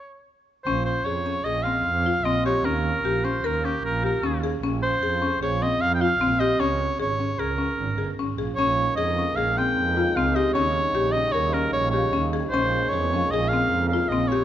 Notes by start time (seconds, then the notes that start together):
Already playing: C#5
0.65 A#1 C#4 C5
0.85 C5
1.05 F2 G#4 C#5
1.26 C#4
1.44 A#1 G#4 D#5
1.63 C4 F5
1.85 F2
2.06 F4
2.24 A#1 C4 D#5
2.46 G4 C#5
2.64 D#2 C#4 A#4
3.04 A#1 G4
3.25 C#4 C5
3.44 D#2 A#4
3.65 C#4 G4
3.84 A#1 A#4
4.03 G4 A#4
4.23 D#2 C#4
4.44 G#4
4.63 A#1 C#4
4.83 C5
5.02 F2 G#4
5.22 C#4
5.41 A#1 G#4 C#5
5.62 C4 D#5
5.81 F2 F5
5.95 G5
6.01 F4 F5
6.21 A#1 C4
6.40 G4 D#5
6.60 C#2 C#4 C#5
7.00 G#1 G#4 C#5
7.20 C#4
7.39 C#2 G#4 A#4
7.58 C#4
7.79 G#1
7.98 G1 G#4
8.19 G#1 C#4
8.38 A#1 G#4
8.56 A#1 C#3 G#3 A#3 C#4 D#4 C#5
8.96 F2 G#4 D#5
9.18 C#4
9.36 A#1 G#4 F5
9.58 C4 G5
9.77 F2
9.97 F4
10.16 C#2 C4 F5
10.35 G4 D#5
10.54 D#2 G3 C#4 C#5
10.95 A#1 G4
11.12 C#4 D#5
11.32 D#2 A#4 C#5
11.53 C#4 A#4
11.73 A#1 C#5
11.90 G4 C#5
12.13 D#2 C#4
12.33 G#4
12.50 A#1 G#3 A#3 C#4 C5
12.89 F2 G#4 C#5
13.13 C#4
13.31 A#1 G#4 D#5
13.49 F5
13.53 C4
13.71 F2
13.88 F5
13.93 F4
14.09 A#1 C4 D#5
14.28 C#5
14.32 G4